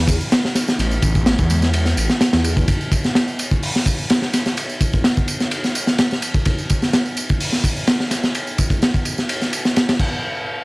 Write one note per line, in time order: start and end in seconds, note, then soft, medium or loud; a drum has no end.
0.00 0.17 E2 medium
0.08 kick loud
0.08 ride medium
0.08 tambourine medium
0.21 tambourine soft
0.32 snare loud
0.32 ride medium
0.32 tambourine soft
0.45 snare medium
0.55 snare medium
0.55 ride medium
0.55 tambourine medium
0.68 snare medium
0.68 tambourine soft
0.79 0.99 A1 loud
0.79 ride medium
0.79 tambourine soft
0.91 tambourine soft
1.02 1.35 A1 medium
1.02 kick loud
1.02 ride medium
1.02 tambourine medium
1.15 kick medium
1.15 tambourine soft
1.26 snare loud
1.26 ride medium
1.26 tambourine soft
1.38 1.94 E2 medium
1.38 kick loud
1.38 tambourine soft
1.50 ride medium
1.50 tambourine medium
1.50 high conga medium
1.62 snare soft
1.62 tambourine soft
1.62 high conga medium
1.73 ride medium
1.73 tambourine soft
1.86 snare soft
1.86 tambourine soft
1.97 2.07 A1 loud
1.97 ride medium
1.97 tambourine medium
2.10 snare medium
2.10 tambourine soft
2.21 snare loud
2.21 ride medium
2.21 tambourine soft
2.33 2.65 E2 medium
2.33 snare loud
2.33 ride medium
2.33 tambourine soft
2.44 ride medium
2.44 tambourine medium
2.57 kick medium
2.57 tambourine soft
2.68 kick loud
2.68 ride medium
2.68 tambourine soft
2.81 tambourine soft
2.92 kick medium
2.92 ride medium
2.92 tambourine medium
3.04 snare soft
3.04 tambourine soft
3.15 snare loud
3.15 ride medium
3.15 tambourine soft
3.28 tambourine soft
3.39 ride medium
3.39 tambourine medium
3.51 kick medium
3.51 tambourine soft
3.63 open hi-hat medium
3.63 tambourine soft
3.75 snare soft
3.75 tambourine soft
3.86 kick medium
3.86 ride medium
3.86 tambourine medium
3.98 tambourine soft
4.10 snare loud
4.10 ride medium
4.10 tambourine soft
4.22 snare medium
4.33 snare medium
4.33 ride medium
4.33 tambourine medium
4.46 snare soft
4.46 tambourine soft
4.57 ride medium
4.57 tambourine soft
4.69 tambourine soft
4.81 kick medium
4.81 ride medium
4.81 tambourine medium
4.93 kick loud
4.93 tambourine soft
5.04 snare loud
5.04 ride medium
5.04 tambourine soft
5.17 kick medium
5.17 tambourine soft
5.28 ride medium
5.28 tambourine medium
5.40 snare soft
5.40 tambourine soft
5.51 ride medium
5.51 tambourine soft
5.64 snare soft
5.64 tambourine soft
5.75 ride medium
5.75 tambourine medium
5.87 snare medium
5.87 tambourine soft
5.98 snare loud
5.98 ride medium
5.98 tambourine soft
6.11 snare medium
6.11 tambourine soft
6.22 ride medium
6.22 tambourine medium
6.34 kick loud
6.34 tambourine soft
6.45 kick loud
6.45 ride medium
6.45 tambourine soft
6.58 tambourine soft
6.69 kick medium
6.69 ride medium
6.69 tambourine medium
6.82 snare soft
6.82 tambourine soft
6.93 snare loud
6.93 ride medium
6.93 tambourine soft
7.06 tambourine soft
7.17 ride medium
7.17 tambourine medium
7.29 kick medium
7.29 tambourine soft
7.40 open hi-hat medium
7.40 tambourine soft
7.53 snare soft
7.53 tambourine soft
7.64 kick medium
7.64 ride medium
7.64 tambourine medium
7.77 tambourine soft
7.87 snare loud
7.87 ride medium
7.87 tambourine soft
8.00 snare soft
8.11 snare soft
8.11 ride medium
8.11 tambourine medium
8.23 snare soft
8.23 tambourine soft
8.35 ride medium
8.35 tambourine soft
8.47 tambourine soft
8.58 kick medium
8.58 ride medium
8.58 tambourine medium
8.70 kick medium
8.70 tambourine soft
8.82 snare loud
8.82 ride medium
8.82 tambourine soft
8.94 kick medium
8.94 tambourine soft
9.05 ride medium
9.05 tambourine medium
9.18 snare soft
9.18 tambourine soft
9.29 ride medium
9.29 tambourine soft
9.42 snare soft
9.42 tambourine soft
9.53 ride medium
9.53 tambourine medium
9.65 snare medium
9.65 tambourine soft
9.76 snare medium
9.76 ride medium
9.76 tambourine soft
9.89 snare loud
9.89 ride medium
9.89 tambourine soft
9.99 kick loud
9.99 crash medium